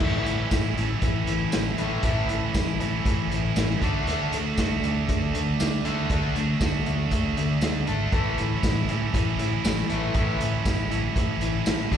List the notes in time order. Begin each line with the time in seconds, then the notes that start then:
0.00 A1 A2 E3 A3, kick, crash
0.04 C#4 E4
0.26 A1 A2 E3, closed hi-hat
0.51 A1 A2 E3, kick, snare, closed hi-hat, tambourine
0.77 A1 A2 E3 A3 C#4 E4, closed hi-hat
1.02 A1 A2 E3, kick, closed hi-hat
1.27 A1 A2 E3, closed hi-hat
1.52 A1 A2 E3, snare, closed hi-hat, tambourine
1.78 A1 A2 E3 A3, closed hi-hat
2.03 A1 A2 E3 A3 C#4, kick, closed hi-hat
2.07 E4
2.29 A1 A2 E3, closed hi-hat
2.54 A1 A2 E3, kick, snare, closed hi-hat, tambourine
2.80 A1 A2 E3 A3 C#4 E4, closed hi-hat
3.05 A1 A2 E3, kick, closed hi-hat
3.31 A1 A2 E3, closed hi-hat
3.56 A1 A2 E3, snare, closed hi-hat, tambourine
3.70 snare
3.82 D2 D3 A3 D4 F#4, kick, closed hi-hat
4.07 D2 D3 A3 D4, closed hi-hat
4.32 D2 D3 A3, closed hi-hat
4.57 D2 D3 A3 D4, kick, snare, closed hi-hat, tambourine
4.62 F#4
4.83 D2 D3 A3, closed hi-hat
5.08 D2 D3 A3, kick, closed hi-hat
5.34 D2 D3 A3, closed hi-hat
5.60 D2 D3 A3, snare, closed hi-hat, tambourine
5.85 D2 D3 A3 D4 F#4, closed hi-hat
6.10 D2 D3 A3 D4, kick, closed hi-hat
6.36 D2 D3 A3, closed hi-hat
6.61 D2 D3 A3 D4 F#4, kick, snare, closed hi-hat, tambourine
6.86 D2 D3 A3, closed hi-hat
7.11 D2 D3 A3, kick, closed hi-hat
7.37 D2 D3 A3, closed hi-hat
7.61 D2 D3 A3, snare, closed hi-hat, tambourine
7.87 G#1 D3 A3 D4, closed hi-hat
8.12 A1 A2 E3 A3 C#4 E4, kick, closed hi-hat
8.38 A1 A2 E3, closed hi-hat
8.63 A1 A2 E3, kick, snare, closed hi-hat, tambourine
8.88 A1 A2 E3 A3 C#4 E4, closed hi-hat
9.14 A1 A2 E3, kick, closed hi-hat
9.39 A1 A2 E3, closed hi-hat
9.65 A1 A2 E3, snare, closed hi-hat, tambourine
9.78 snare
9.89 A1 A2 E3 A3, closed hi-hat
10.14 A1 A2 E3 A3 C#4, kick, closed hi-hat
10.19 E4
10.40 A1 A2 E3, closed hi-hat
10.65 A1 A2 E3, kick, snare, closed hi-hat, tambourine
10.91 A1 A2 E3 A3 C#4 E4, closed hi-hat
11.16 A1 A2 E3, kick, closed hi-hat
11.41 A1 A2 E3, closed hi-hat
11.66 A1 A2 E3, snare, closed hi-hat, tambourine
11.80 snare
11.92 D2 D3 A3 D4, kick, closed hi-hat